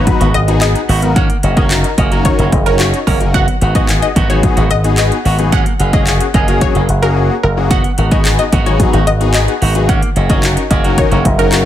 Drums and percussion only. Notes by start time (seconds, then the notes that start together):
0.07 kick, closed hi-hat
0.21 closed hi-hat
0.34 closed hi-hat
0.48 closed hi-hat
0.61 clap, closed hi-hat
0.76 closed hi-hat
0.89 open hi-hat
1.02 closed hi-hat
1.16 kick, closed hi-hat
1.30 closed hi-hat
1.43 closed hi-hat
1.57 kick, closed hi-hat
1.71 clap, closed hi-hat
1.84 closed hi-hat
1.98 kick, closed hi-hat
2.12 closed hi-hat
2.25 kick, closed hi-hat
2.39 closed hi-hat
2.52 kick, closed hi-hat
2.66 closed hi-hat
2.79 clap, closed hi-hat
2.94 closed hi-hat
3.07 kick, open hi-hat
3.21 closed hi-hat
3.34 kick, closed hi-hat
3.48 closed hi-hat
3.62 closed hi-hat
3.75 kick, closed hi-hat
3.89 clap, closed hi-hat
4.02 closed hi-hat
4.16 kick, closed hi-hat
4.30 closed hi-hat
4.43 kick, closed hi-hat
4.57 closed hi-hat
4.71 closed hi-hat
4.84 closed hi-hat
4.98 clap, closed hi-hat
5.12 closed hi-hat
5.25 open hi-hat
5.39 closed hi-hat
5.52 kick, closed hi-hat
5.66 closed hi-hat
5.80 closed hi-hat
5.93 kick, closed hi-hat
6.07 clap, closed hi-hat
6.21 closed hi-hat
6.34 kick, closed hi-hat
6.48 closed hi-hat
6.61 kick, closed hi-hat
6.75 closed hi-hat
6.89 closed hi-hat
7.03 closed hi-hat
7.71 kick, closed hi-hat
7.84 closed hi-hat
7.98 closed hi-hat
8.11 kick, closed hi-hat
8.25 clap, closed hi-hat
8.39 closed hi-hat
8.53 kick, closed hi-hat
8.66 closed hi-hat
8.80 kick, closed hi-hat
8.93 closed hi-hat
9.07 closed hi-hat
9.21 closed hi-hat
9.34 clap, closed hi-hat
9.48 closed hi-hat
9.62 open hi-hat
9.75 closed hi-hat
9.89 kick, closed hi-hat
10.03 closed hi-hat
10.16 closed hi-hat
10.30 kick, closed hi-hat
10.43 clap, closed hi-hat
10.57 closed hi-hat
10.71 kick, closed hi-hat
10.84 closed hi-hat
10.98 kick, closed hi-hat
11.12 closed hi-hat
11.25 kick, closed hi-hat
11.39 closed hi-hat
11.52 clap, closed hi-hat